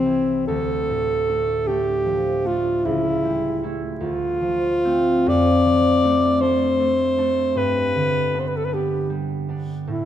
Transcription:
Already playing: C2 E3 C4
0.06 G3 E4
0.47 D2 A4
0.90 A2
1.28 A3 D4
1.67 A3 D4 G4
2.05 F3
2.44 A3 D4 F4
2.85 C#2 E4
3.25 G3
3.63 A3 E4
4.00 D2 F4
4.41 F3
4.84 A3 C4
5.26 F2 D5
5.66 F3
6.04 A3 D4
6.41 A3 D4 C5
6.80 A3
7.18 A3 D4
7.55 G2 B4
7.95 D3
8.34 B3 D4
8.39 C5
8.47 B4
8.57 A4
8.65 B4
8.73 B3 D4 G4
9.10 G3
9.48 B3 D4
9.87 A2 E4

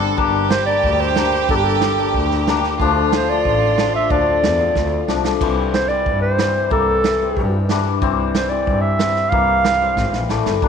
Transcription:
Already playing: G1 G3 A4
0.17 G1 G3 A#3 D4 G4, kick
0.50 C5, snare
0.66 G3 A#3 D4 D5
0.84 D2, kick
0.91 D5
1.00 C5
1.16 G3 A#3 D4, snare
1.49 G1 G3 A#3 D4 A4, kick
1.56 G4
1.64 A4
1.81 snare
1.98 G3 A#3 D4
2.14 D2, kick
2.31 snare
2.47 G3 A#3 D4, snare
2.63 snare
2.79 D2 F3 A3 D4 F4, kick
3.12 C5, snare
3.29 F3 A3 D4 D5
3.45 A1, kick
3.78 F3 A3 D4, snare
3.95 E5
4.10 D2 F3 A3 D4 D5, kick
4.43 E2, snare
4.60 F3 A3 C4
4.75 D2, kick, snare
5.08 C2 F3 A3 D4, snare
5.24 snare
5.41 C2 E3 G3 C4, kick, crash
5.73 C5, snare
5.88 E3 G3 C4 D5
6.06 G2, kick
6.21 C5
6.38 E3 G3 C4, snare
6.70 C2 E3 G3 A#3 A4, kick
7.04 snare
7.22 E3 G3 C4
7.37 G2, kick
7.69 E3 G3 D4, snare
8.02 C2 E3 G3 C4, kick
8.35 C5, snare
8.49 E3 G3 C4 D5
8.67 G2, kick
8.81 E5
8.99 E3 G3 C4, snare
9.16 snare
9.29 C2 E3 G3 A#3 F5, kick
9.64 snare
9.82 E3 G3 C4
9.97 G#1, kick, snare
10.13 A#1, snare
10.29 A1 E3 G3 A3, snare
10.46 G1, snare
10.62 G1 G3 A#3 D4 F4, kick

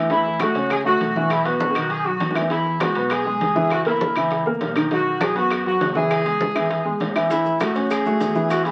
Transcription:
Already playing: A2
0.10 E3 E4, high bongo, high conga, high timbale
0.25 high bongo, high conga
0.40 A3 F#4 A4, high bongo, high conga, high timbale, claves
0.55 C#2 C#4 C#5, high conga, high timbale
0.70 G#4, high bongo, high conga, high timbale, claves
0.84 A3 F#4 A4, high bongo, high conga
1.00 B1, high bongo, low bongo, high conga, high timbale
1.16 E3 E4, high bongo, high conga
1.30 E4, high bongo, high conga, high timbale, claves
1.45 B3 F#4 B4, high bongo, high conga, high timbale
1.60 high bongo, high conga
1.71 high bongo
1.75 B1 D#3 D#4, high conga, high timbale, claves
1.90 G#4, high conga, high timbale
2.06 F#3 F#4, high conga
2.20 E2, low bongo, high conga, high timbale
2.31 E3, low bongo
2.35 E4, high conga, high timbale, claves
2.41 low bongo
2.50 E3 E4, high bongo, high conga, high timbale
2.65 high bongo, high conga
2.80 G#3 F#4 G#4, high bongo, high conga, high timbale, claves
2.95 B1 B3 B4, high conga, high timbale
3.10 G#4, high bongo, high conga, high timbale, claves
3.26 G#3 G#4, high bongo, high conga
3.40 F#1, high bongo, low bongo, high conga, high timbale
3.55 E3 E4, high bongo, high conga
3.70 F#4, high bongo, high conga, high timbale, claves
3.85 A#3 E4 A#4, high bongo, high conga, high timbale
4.01 high bongo, high conga
4.16 C#2 E3 E4, high conga, high timbale, claves
4.31 high bongo, high conga, high timbale
4.46 A#3 A#4, high bongo, high conga
4.61 B1, high bongo, low bongo, high conga, high timbale, low timbale
4.76 D#3 D#4, high bongo, high conga, high timbale, claves
4.91 D#3 D#4 F#4, high bongo, high conga, high timbale
5.07 high bongo, high conga
5.20 F#3 F#4 G#4, high bongo, high conga, high timbale, claves
5.35 F#2 B3 F#4 B4, high conga, high timbale
5.50 high bongo, high conga, high timbale, claves
5.65 F#3 F#4, high bongo, high conga
5.80 C#2, high bongo, low bongo, high conga, high timbale, low timbale
5.95 E3 E4 G#4, high bongo, high conga
6.10 high bongo, high conga, high timbale, claves
6.25 G#3 G#4, high bongo, high conga, high timbale
6.41 high bongo, high conga
6.55 G#1 E3 E4, high conga, high timbale, claves
6.70 high bongo, high conga, high timbale
6.85 G#3 G#4, high bongo, high conga
7.00 A1, high bongo, low bongo, high conga, high timbale, low timbale
7.15 E3 E4, high bongo, high conga, high timbale, claves
7.30 E3 E4, high bongo, high conga, high timbale, maracas
7.46 high bongo, high conga, maracas
7.60 A3 F#4 A4, high bongo, high conga, high timbale, claves, maracas
7.75 A2 C#4 C#5, high conga, high timbale, maracas
7.90 G#4, high bongo, high conga, high timbale, claves, maracas
8.06 A3 F#4, high bongo, high conga, maracas
8.20 E2, high bongo, low bongo, high conga, high timbale, maracas
8.35 E3 E4, high bongo, high conga, maracas
8.50 F#4, high bongo, high conga, high timbale, claves, maracas
8.64 G#3 E4 G#4, high bongo, high conga, high timbale, maracas

